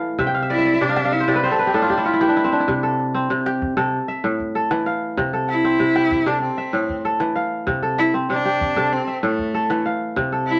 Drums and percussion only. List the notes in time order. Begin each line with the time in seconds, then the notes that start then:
0.18 calabash thump
0.51 calabash click
0.97 calabash click
1.90 calabash thump
2.21 calabash click
2.68 calabash thump
3.00 calabash click
3.46 calabash click
3.62 calabash thump
4.40 calabash thump
4.71 calabash click
5.18 calabash thump
5.33 calabash click
5.49 calabash click
5.65 calabash click
5.96 calabash click
6.11 calabash thump
6.58 calabash click
6.74 calabash click
6.89 calabash thump
7.20 calabash click
7.67 calabash thump
7.99 calabash click
8.61 calabash thump
9.39 calabash thump
9.71 calabash click
10.17 calabash thump
10.49 calabash click